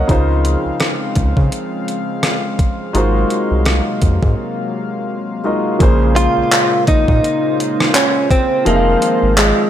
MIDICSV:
0, 0, Header, 1, 6, 480
1, 0, Start_track
1, 0, Key_signature, -5, "minor"
1, 0, Tempo, 714286
1, 61, Time_signature, 4, 2, 24, 8
1, 6518, End_track
2, 0, Start_track
2, 0, Title_t, "Grand piano"
2, 0, Program_c, 0, 0
2, 0, Control_c, 0, 64, 127
2, 0, Note_on_c, 0, 70, 54
2, 0, Note_on_c, 0, 73, 60
2, 0, Note_on_c, 0, 75, 59
2, 0, Note_on_c, 0, 77, 57
2, 0, Note_on_c, 0, 78, 72
2, 0, Note_on_c, 0, 80, 51
2, 0, Note_on_c, 0, 82, 67
2, 0, Note_on_c, 0, 85, 63
2, 52, Note_on_c, 0, 49, 71
2, 57, Note_on_c, 0, 56, 68
2, 64, Note_on_c, 0, 63, 70
2, 69, Note_off_c, 0, 77, 0
2, 69, Note_off_c, 0, 78, 0
2, 69, Control_c, 0, 64, 0
2, 70, Note_on_c, 0, 65, 69
2, 71, Note_off_c, 0, 73, 0
2, 71, Note_off_c, 0, 85, 0
2, 73, Note_off_c, 0, 80, 0
2, 73, Note_off_c, 0, 82, 0
2, 75, Note_on_c, 0, 72, 78
2, 171, Control_c, 0, 64, 127
2, 191, Note_off_c, 0, 75, 0
2, 193, Note_off_c, 0, 70, 0
2, 1950, Note_off_c, 0, 49, 0
2, 1952, Note_off_c, 0, 56, 0
2, 1956, Note_off_c, 0, 63, 0
2, 1958, Note_off_c, 0, 65, 0
2, 1961, Note_off_c, 0, 72, 0
2, 1971, Note_on_c, 0, 56, 74
2, 1977, Note_on_c, 0, 63, 72
2, 1982, Note_on_c, 0, 65, 69
2, 1988, Note_on_c, 0, 66, 65
2, 1991, Control_c, 0, 64, 0
2, 1992, Note_on_c, 0, 70, 65
2, 1997, Note_on_c, 0, 72, 80
2, 2095, Control_c, 0, 64, 127
2, 3629, Note_off_c, 0, 56, 0
2, 3632, Note_off_c, 0, 63, 0
2, 3635, Note_off_c, 0, 65, 0
2, 3637, Note_off_c, 0, 66, 0
2, 3640, Note_off_c, 0, 70, 0
2, 3642, Note_off_c, 0, 72, 0
2, 3657, Note_on_c, 0, 56, 61
2, 3660, Note_on_c, 0, 63, 54
2, 3663, Note_on_c, 0, 65, 52
2, 3665, Note_on_c, 0, 66, 53
2, 3668, Note_on_c, 0, 70, 52
2, 3671, Note_on_c, 0, 75, 60
2, 3890, Note_on_c, 0, 46, 76
2, 3897, Note_on_c, 0, 58, 77
2, 3899, Note_off_c, 0, 56, 0
2, 3901, Note_off_c, 0, 63, 0
2, 3902, Note_off_c, 0, 65, 0
2, 3903, Note_off_c, 0, 66, 0
2, 3903, Note_on_c, 0, 49, 74
2, 3904, Note_off_c, 0, 70, 0
2, 3906, Note_off_c, 0, 75, 0
2, 3909, Control_c, 0, 64, 0
2, 3909, Note_on_c, 0, 68, 74
2, 3916, Note_on_c, 0, 72, 89
2, 4009, Control_c, 0, 64, 127
2, 5789, Note_off_c, 0, 46, 0
2, 5792, Note_off_c, 0, 58, 0
2, 5795, Note_off_c, 0, 49, 0
2, 5798, Note_off_c, 0, 68, 0
2, 5802, Note_off_c, 0, 72, 0
2, 5814, Note_on_c, 0, 53, 69
2, 5821, Note_on_c, 0, 60, 64
2, 5826, Note_on_c, 0, 63, 63
2, 5831, Control_c, 0, 64, 0
2, 5832, Note_on_c, 0, 68, 64
2, 5839, Note_on_c, 0, 76, 62
2, 5881, Note_off_c, 0, 76, 0
2, 5883, Note_on_c, 0, 77, 74
2, 5957, Control_c, 0, 64, 127
2, 6518, Note_off_c, 0, 53, 0
2, 6518, Note_off_c, 0, 60, 0
2, 6518, Note_off_c, 0, 63, 0
2, 6518, Note_off_c, 0, 68, 0
2, 6518, Note_off_c, 0, 77, 0
2, 6518, End_track
3, 0, Start_track
3, 0, Title_t, "Clean electric guitar"
3, 0, Program_c, 1, 27
3, 4141, Note_on_c, 1, 65, 112
3, 4594, Note_off_c, 1, 65, 0
3, 4624, Note_on_c, 1, 63, 105
3, 5316, Note_off_c, 1, 63, 0
3, 5344, Note_on_c, 1, 61, 97
3, 5580, Note_off_c, 1, 61, 0
3, 5583, Note_on_c, 1, 60, 100
3, 5805, Note_off_c, 1, 60, 0
3, 5826, Note_on_c, 1, 58, 96
3, 6276, Note_off_c, 1, 58, 0
3, 6305, Note_on_c, 1, 56, 80
3, 6518, Note_off_c, 1, 56, 0
3, 6518, End_track
4, 0, Start_track
4, 0, Title_t, "Analog synth pad"
4, 0, Program_c, 2, 89
4, 0, Note_on_c, 2, 77, 79
4, 57, Note_on_c, 2, 53, 68
4, 57, Note_on_c, 2, 56, 68
4, 58, Note_on_c, 2, 49, 72
4, 58, Note_on_c, 2, 60, 65
4, 1960, Note_off_c, 2, 49, 0
4, 1960, Note_off_c, 2, 53, 0
4, 1960, Note_off_c, 2, 60, 0
4, 1980, Note_on_c, 2, 54, 68
4, 1982, Note_on_c, 2, 48, 74
4, 1984, Note_on_c, 2, 58, 69
4, 3870, Note_off_c, 2, 77, 0
4, 3872, Note_off_c, 2, 56, 0
4, 3882, Note_off_c, 2, 48, 0
4, 3882, Note_off_c, 2, 54, 0
4, 3883, Note_off_c, 2, 58, 0
4, 3903, Note_on_c, 2, 58, 72
4, 3903, Note_on_c, 2, 65, 84
4, 3903, Note_on_c, 2, 72, 68
4, 3904, Note_on_c, 2, 56, 68
4, 3905, Note_on_c, 2, 49, 79
4, 5803, Note_off_c, 2, 58, 0
4, 5804, Note_off_c, 2, 49, 0
4, 5822, Note_on_c, 2, 51, 77
4, 5823, Note_on_c, 2, 53, 69
4, 6518, Note_off_c, 2, 51, 0
4, 6518, Note_off_c, 2, 53, 0
4, 6518, Note_off_c, 2, 56, 0
4, 6518, Note_off_c, 2, 65, 0
4, 6518, Note_off_c, 2, 72, 0
4, 6518, End_track
5, 0, Start_track
5, 0, Title_t, "Analog synth bass"
5, 0, Program_c, 3, 38
5, 62, Note_on_c, 3, 37, 103
5, 379, Note_off_c, 3, 37, 0
5, 441, Note_on_c, 3, 37, 48
5, 481, Note_off_c, 3, 37, 0
5, 782, Note_on_c, 3, 37, 104
5, 898, Note_off_c, 3, 37, 0
5, 919, Note_on_c, 3, 49, 96
5, 1004, Note_off_c, 3, 49, 0
5, 1980, Note_on_c, 3, 32, 109
5, 2181, Note_off_c, 3, 32, 0
5, 2361, Note_on_c, 3, 36, 85
5, 2561, Note_off_c, 3, 36, 0
5, 2702, Note_on_c, 3, 41, 98
5, 2818, Note_off_c, 3, 41, 0
5, 2839, Note_on_c, 3, 44, 99
5, 2924, Note_off_c, 3, 44, 0
5, 3900, Note_on_c, 3, 34, 117
5, 4218, Note_off_c, 3, 34, 0
5, 4282, Note_on_c, 3, 34, 50
5, 4322, Note_off_c, 3, 34, 0
5, 4623, Note_on_c, 3, 34, 96
5, 4739, Note_off_c, 3, 34, 0
5, 4760, Note_on_c, 3, 46, 99
5, 4844, Note_off_c, 3, 46, 0
5, 5822, Note_on_c, 3, 29, 113
5, 6022, Note_off_c, 3, 29, 0
5, 6201, Note_on_c, 3, 32, 96
5, 6402, Note_off_c, 3, 32, 0
5, 6518, End_track
6, 0, Start_track
6, 0, Title_t, "Drums"
6, 61, Note_on_c, 9, 36, 110
6, 61, Note_on_c, 9, 42, 64
6, 128, Note_off_c, 9, 36, 0
6, 128, Note_off_c, 9, 42, 0
6, 301, Note_on_c, 9, 42, 68
6, 368, Note_off_c, 9, 42, 0
6, 536, Note_on_c, 9, 42, 59
6, 541, Note_on_c, 9, 37, 112
6, 603, Note_off_c, 9, 42, 0
6, 608, Note_off_c, 9, 37, 0
6, 776, Note_on_c, 9, 42, 57
6, 781, Note_on_c, 9, 36, 85
6, 843, Note_off_c, 9, 42, 0
6, 849, Note_off_c, 9, 36, 0
6, 919, Note_on_c, 9, 36, 80
6, 986, Note_off_c, 9, 36, 0
6, 1023, Note_on_c, 9, 42, 66
6, 1090, Note_off_c, 9, 42, 0
6, 1264, Note_on_c, 9, 42, 64
6, 1331, Note_off_c, 9, 42, 0
6, 1498, Note_on_c, 9, 37, 107
6, 1501, Note_on_c, 9, 42, 67
6, 1566, Note_off_c, 9, 37, 0
6, 1568, Note_off_c, 9, 42, 0
6, 1741, Note_on_c, 9, 36, 93
6, 1742, Note_on_c, 9, 42, 64
6, 1808, Note_off_c, 9, 36, 0
6, 1809, Note_off_c, 9, 42, 0
6, 1980, Note_on_c, 9, 42, 66
6, 2048, Note_off_c, 9, 42, 0
6, 2220, Note_on_c, 9, 42, 71
6, 2288, Note_off_c, 9, 42, 0
6, 2456, Note_on_c, 9, 42, 59
6, 2461, Note_on_c, 9, 37, 112
6, 2523, Note_off_c, 9, 42, 0
6, 2528, Note_off_c, 9, 37, 0
6, 2698, Note_on_c, 9, 42, 61
6, 2702, Note_on_c, 9, 36, 83
6, 2766, Note_off_c, 9, 42, 0
6, 2769, Note_off_c, 9, 36, 0
6, 2840, Note_on_c, 9, 36, 81
6, 2907, Note_off_c, 9, 36, 0
6, 3900, Note_on_c, 9, 36, 127
6, 3900, Note_on_c, 9, 42, 72
6, 3967, Note_off_c, 9, 42, 0
6, 3968, Note_off_c, 9, 36, 0
6, 4142, Note_on_c, 9, 42, 78
6, 4209, Note_off_c, 9, 42, 0
6, 4379, Note_on_c, 9, 42, 63
6, 4383, Note_on_c, 9, 39, 115
6, 4446, Note_off_c, 9, 42, 0
6, 4451, Note_off_c, 9, 39, 0
6, 4619, Note_on_c, 9, 42, 65
6, 4622, Note_on_c, 9, 36, 93
6, 4686, Note_off_c, 9, 42, 0
6, 4689, Note_off_c, 9, 36, 0
6, 4760, Note_on_c, 9, 36, 88
6, 4827, Note_off_c, 9, 36, 0
6, 4868, Note_on_c, 9, 42, 77
6, 4935, Note_off_c, 9, 42, 0
6, 5108, Note_on_c, 9, 42, 71
6, 5176, Note_off_c, 9, 42, 0
6, 5245, Note_on_c, 9, 37, 108
6, 5312, Note_off_c, 9, 37, 0
6, 5342, Note_on_c, 9, 39, 115
6, 5344, Note_on_c, 9, 42, 72
6, 5409, Note_off_c, 9, 39, 0
6, 5412, Note_off_c, 9, 42, 0
6, 5582, Note_on_c, 9, 36, 99
6, 5585, Note_on_c, 9, 42, 70
6, 5649, Note_off_c, 9, 36, 0
6, 5652, Note_off_c, 9, 42, 0
6, 5821, Note_on_c, 9, 42, 72
6, 5888, Note_off_c, 9, 42, 0
6, 6061, Note_on_c, 9, 42, 77
6, 6129, Note_off_c, 9, 42, 0
6, 6296, Note_on_c, 9, 42, 67
6, 6301, Note_on_c, 9, 39, 119
6, 6363, Note_off_c, 9, 42, 0
6, 6368, Note_off_c, 9, 39, 0
6, 6518, End_track
0, 0, End_of_file